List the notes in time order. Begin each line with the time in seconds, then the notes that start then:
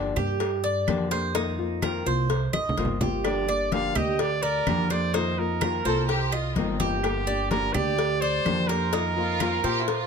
Already playing: D3 F3 A#3 D4 G4 D5
0.16 G2 A#3 D4 G4, high conga, low conga, claves
0.40 muted nylon-string guitar stroke, cowbell, high conga
0.64 D5, high conga
0.87 F2 D3 F3 A#3 D4 G4, cowbell, high conga, claves
1.10 A#3 D4 G4 C5, cowbell, high conga
1.34 D#3 A#3 C4 D#4 F4, cowbell, high conga
1.58 A#3 C4 F4, high conga
1.81 D#3 A#3 C4 F4 A#4, cowbell, high conga, claves
2.05 C2 A#3 C4 F4 C5, high conga
2.29 muted nylon-string guitar stroke, cowbell, high conga
2.53 A1 D#5, high conga, claves
2.69 low conga
2.77 G1 D#3 A#3 C4 F4, cowbell
2.85 low conga
3.01 A#3 C4 F4 G4, low conga
3.24 D3 F3 A#3 D4 G4 D5, cowbell, high conga, claves
3.48 A#3 D4 G4 D5, high conga
3.72 D3 F3 A#3 D4 G4 F5, cowbell, high conga
3.95 D2 A#3 D4 G4 D#5, high conga, low conga, claves
4.19 D5, muted nylon-string guitar stroke, cowbell, high conga
4.43 A#4 D5, high conga
4.67 F2 D3 F3 A#3 D4 G4, cowbell, high conga, claves
4.90 A#3 D4 G4 C5 D5, cowbell, high conga
5.14 D#3 A#3 C4 D#4 F4 C5, cowbell, high conga
5.38 A#3 C4 F4 A#4, high conga
5.61 D#3 A#3 C4 F4 A#4, cowbell, high conga, claves
5.85 C2 A#3 C4 F4 A4 C5, high conga
6.09 G4, muted nylon-string guitar stroke, cowbell, high conga
6.32 F4 D#5, high conga, claves
6.55 G1 D#3 A#3 C4 D#4 F4, cowbell, high conga
6.80 A#3 C4 F4 G4, high conga
7.03 D3 F3 A#3 D4 G4, cowbell, high conga, claves
7.27 A#3 D4 G4 D5, high conga
7.50 D3 F3 A#3 D4 G4 A#4, cowbell, high conga
7.73 D2 A#3 D4 G4 D5, high conga, low conga, claves
7.98 muted nylon-string guitar stroke, cowbell, high conga
8.21 C5 D5, high conga
8.45 F2 D3 F3 A#3 D4 G4, cowbell, high conga, claves
8.68 A#3 D4 G4 A#4 C5, cowbell, high conga
8.93 D#3 A#3 C4 D#4 F4, cowbell, high conga
9.16 A#3 C4 F4, high conga
9.40 D#3 A#3 C4 F4 A#4, cowbell, high conga, claves
9.63 A#2 A#3 C4 F4 G4 C5, high conga
9.81 E4
9.88 F4, muted nylon-string guitar stroke, cowbell, high conga